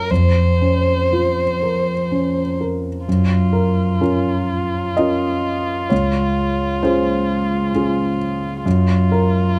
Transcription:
0.00 0.12 F4 soft
0.00 0.12 A#4 soft
0.00 0.13 C#5 soft
0.10 3.03 F2 soft
0.10 2.59 C5 soft
0.62 1.42 C#4 soft
1.13 1.92 F4 soft
1.62 2.40 A#4 soft
2.12 2.89 C#4 soft
2.61 3.08 A#4 soft
3.07 3.98 F#2 soft
3.07 8.61 F4 soft
3.53 4.00 A#4 soft
4.01 4.94 C#4 soft
4.01 4.94 F4 soft
4.01 4.94 A#4 soft
4.97 5.87 C#4 soft
4.97 5.87 F4 soft
4.97 5.88 A#4 soft
4.97 5.87 D#5 soft
5.90 6.80 C#2 soft
5.90 6.78 C#5 soft
6.83 7.70 C#4 soft
6.83 7.71 F4 soft
6.83 7.71 G#4 soft
6.83 8.16 C5 soft
7.74 8.62 C#4 soft
7.74 8.62 F4 soft
7.74 8.62 G#4 soft
8.65 9.56 F#2 soft
8.65 9.59 F4 soft
9.12 9.58 A#4 medium

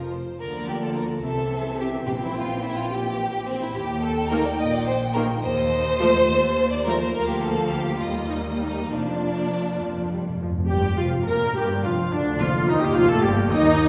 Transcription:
0.00 0.10 F1 medium
0.00 0.13 F4 medium
0.00 0.12 A#4 soft
0.13 0.41 C5 soft
0.40 1.21 D2 soft
0.40 1.21 D3 soft
0.40 1.20 F3 soft
0.40 1.20 A#3 soft
0.40 0.67 A#4 medium
0.40 1.23 D5 medium
0.68 0.74 G4 medium
0.82 0.96 A4 medium
0.95 1.03 A#4 medium
1.24 2.09 C2 soft
1.24 2.08 C3 medium
1.24 3.72 E3 soft
1.24 3.72 C4 medium
1.24 1.79 A4 medium
1.24 2.07 E5 soft
1.80 1.88 G4 medium
2.07 3.73 A#1 medium
2.07 2.87 A#2 medium
2.07 3.73 A#2 medium
2.07 2.13 G4 medium
2.07 3.73 G5 medium
2.23 2.36 E4 medium
2.36 2.64 F4 medium
2.64 2.78 E4 medium
2.78 2.92 F4 medium
2.91 3.47 G4 medium
3.46 3.61 C4 medium
3.61 3.75 E4 medium
3.75 4.46 D#2 medium
3.75 4.03 G4 loud
3.75 5.42 G5 medium
4.03 4.31 A4 medium
4.29 4.45 D#3 medium
4.29 4.45 A#3 medium
4.29 4.45 A#4 medium
4.46 4.51 D5 medium
4.59 5.31 A#1 medium
4.59 5.31 A#2 medium
4.59 4.74 D#5 medium
4.73 4.88 D5 medium
4.87 4.95 C5 medium
5.14 5.29 D#3 medium
5.14 5.29 A#3 medium
5.14 5.22 A#4 medium
5.43 6.15 D#2 medium
5.43 6.69 C5 loud
5.43 6.28 D#5 medium
6.00 6.14 F3 medium
6.00 6.14 A3 medium
6.29 7.01 D#2 medium
6.29 7.16 C5 medium
6.72 6.86 D5 medium
6.86 6.99 F3 medium
6.86 7.00 A3 medium
6.86 7.00 A#4 medium
7.01 7.15 C5 medium
7.14 7.99 D2 medium
7.14 7.99 F3 medium
7.14 7.99 A#3 medium
7.14 7.29 A#4 loud
7.14 8.01 F5 medium
7.29 7.44 G4 medium
7.42 7.73 A4 medium
7.71 8.02 G4 medium
8.01 8.92 D#2 medium
8.01 8.92 G3 medium
8.01 8.90 A#3 medium
8.01 8.31 F4 medium
8.01 8.91 D#5 medium
8.30 8.38 D#4 medium
8.60 8.91 D#4 medium
8.90 9.81 F1 soft
8.90 9.81 F2 soft
8.90 9.80 F3 medium
8.90 9.80 A#3 medium
8.90 10.41 D4 medium
8.90 10.24 D5 medium
9.81 10.49 F1 soft
9.81 9.88 F2 soft
9.81 10.49 F2 soft
9.81 10.10 F3 soft
9.90 9.96 F2 soft
9.97 10.03 F2 soft
10.04 10.12 F2 soft
10.11 10.19 F2 soft
10.11 10.19 G3 soft
10.21 10.28 F2 soft
10.29 10.36 F2 medium
10.37 10.42 F2 medium
10.37 10.48 F3 soft
10.44 10.50 F2 medium
10.52 10.57 F2 medium
10.59 10.67 F2 medium
10.69 10.98 G1 medium
10.69 10.98 G2 medium
10.69 10.83 G3 medium
10.69 10.97 G4 medium
10.69 10.83 G4 medium
10.69 10.98 G4 medium
10.69 10.98 G5 medium
10.98 11.28 F1 medium
10.98 11.28 F2 medium
10.98 11.14 F3 medium
10.98 11.28 F4 medium
10.98 11.12 F4 medium
10.98 11.08 F4 medium
10.98 11.06 F4 medium
10.98 11.07 F5 medium
11.27 11.57 A#1 medium
11.27 11.57 A#2 medium
11.27 11.41 A#3 medium
11.27 11.56 A#4 medium
11.27 11.34 A#4 medium
11.27 11.56 A#4 medium
11.27 11.36 A#5 medium
11.56 11.85 G1 medium
11.56 11.85 G2 medium
11.56 11.85 G3 medium
11.56 12.38 D4 medium
11.56 11.64 G4 medium
11.56 11.87 G4 medium
11.56 11.64 G4 medium
11.56 11.85 G5 medium
11.83 12.13 F1 medium
11.83 12.14 F2 medium
11.83 12.13 F3 medium
11.83 11.91 F4 medium
11.83 11.92 F4 medium
11.83 12.14 F4 medium
11.83 12.15 F4 medium
11.83 12.14 F5 medium
12.12 12.41 D2 medium
12.12 12.42 D2 medium
12.12 12.40 D3 medium
12.12 12.20 D4 medium
12.12 12.42 D4 medium
12.12 12.41 D4 medium
12.12 12.44 D4 medium
12.12 12.41 D5 medium
12.39 12.69 F1 medium
12.39 12.69 F2 medium
12.39 13.20 D3 medium
12.39 12.53 F3 medium
12.39 13.88 A#3 medium
12.39 12.47 F4 medium
12.39 12.68 F4 medium
12.39 12.69 F4 medium
12.39 12.71 F4 medium
12.39 12.48 F5 medium
12.67 12.83 D#2 medium
12.67 12.83 D#3 medium
12.67 12.82 D#4 medium
12.67 12.83 D#4 medium
12.67 12.86 D#4 medium
12.67 12.82 D#5 medium
12.81 12.97 G2 medium
12.81 12.97 G3 medium
12.81 12.96 G4 medium
12.81 12.97 G4 medium
12.81 12.96 G4 medium
12.81 12.96 G5 medium
12.85 12.99 G4 medium
12.94 13.10 F1 medium
12.94 13.11 F2 medium
12.94 13.03 F3 medium
12.94 13.09 F4 medium
12.94 13.10 F4 medium
12.94 13.10 F5 medium
13.09 13.25 A2 medium
13.09 13.24 A3 medium
13.09 13.25 A4 medium
13.09 13.24 A4 medium
13.09 13.17 A4 medium
13.09 13.15 A5 medium
13.22 13.52 G1 medium
13.22 13.52 G2 medium
13.22 13.36 G3 medium
13.22 13.30 G4 medium
13.22 13.53 G4 medium
13.22 13.31 G4 medium
13.22 13.52 G5 medium
13.50 13.88 D#2 medium
13.50 13.88 D#3 medium
13.50 13.88 D#4 loud
13.50 13.88 D#4 medium
13.50 13.88 D#5 medium
13.54 13.88 D#4 medium

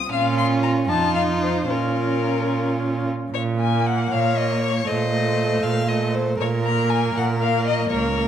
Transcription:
0.00 0.11 D#6 medium
0.11 0.90 A#2 soft
0.11 0.91 C#4 soft
0.11 0.84 F4 soft
0.11 0.37 F5 medium
0.38 0.46 C6 medium
0.63 0.71 A#5 medium
0.88 1.69 F2 soft
0.88 1.70 D#4 soft
0.88 1.68 F4 medium
0.88 1.14 A5 medium
1.15 1.23 F5 medium
1.43 1.72 C5 medium
1.69 3.09 A#2 soft
1.69 3.09 C#4 soft
1.69 3.09 F4 soft
1.69 3.06 A#4 medium
3.32 4.01 A#2 medium
3.32 3.42 C#5 medium
3.59 4.35 A#3 soft
3.59 3.88 G#5 medium
3.87 4.14 F#5 medium
4.11 4.78 A#2 soft
4.11 4.88 C#5 medium
4.11 4.39 F5 medium
4.36 4.86 A#3 soft
4.36 4.62 D#5 medium
4.62 4.90 C#5 medium
4.86 5.55 A#2 medium
4.86 5.11 A3 soft
4.86 6.16 C5 medium
4.86 5.65 D#5 medium
5.12 5.88 A3 soft
5.63 6.31 A#2 soft
5.63 5.90 F5 medium
5.88 6.39 A3 soft
5.88 6.16 D#5 soft
6.15 6.38 C5 soft
6.39 7.06 A#2 medium
6.39 7.87 A#4 medium
6.39 6.49 C#5 medium
6.64 7.38 A#3 soft
6.64 6.92 A#5 medium
6.90 7.15 G#5 medium
7.15 7.81 A#2 soft
7.15 7.25 F#5 medium
7.39 7.89 A#3 soft
7.39 7.65 F5 medium
7.67 7.91 D#5 medium
7.90 8.28 C#2 medium
7.90 8.16 A#3 soft
7.90 8.28 A#4 medium
7.90 8.28 C#5 medium
8.16 8.28 A#3 soft

